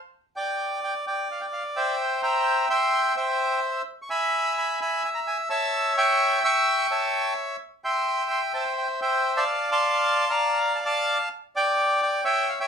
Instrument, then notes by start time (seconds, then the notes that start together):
bandoneon
0.36 D5 G5
0.84 G5
1.07 D5 G5
1.32 F5
1.41 G5
1.53 F5
1.76 C5 E5 G5
2.23 E5 G5 A#5
2.70 E5 G5 C6
3.16 C5 E5 G5
4.02 C#6
4.10 E5 G#5 B5
4.58 B5
4.81 E5 G#5 B5
5.05 G#5
5.15 A#5
5.27 G#5
5.50 C#5 E5 A5
5.98 E5 G5 C#6
6.44 G5 C#6 E6
6.91 C#5 E5 A5
7.84 E5 G5 C6
8.31 C6
8.54 C5 E5 A5
8.78 G5
9.02 C5 E5 G5
9.37 D5 F5 A5
9.71 F5 A5 C6
10.30 D5 F5 A#5
10.75 A5
10.86 F5 A5 D6
11.56 D5 G5
12.02 G5
12.25 C#5 E5 G5
12.49 F5
12.60 C#5 E5 G5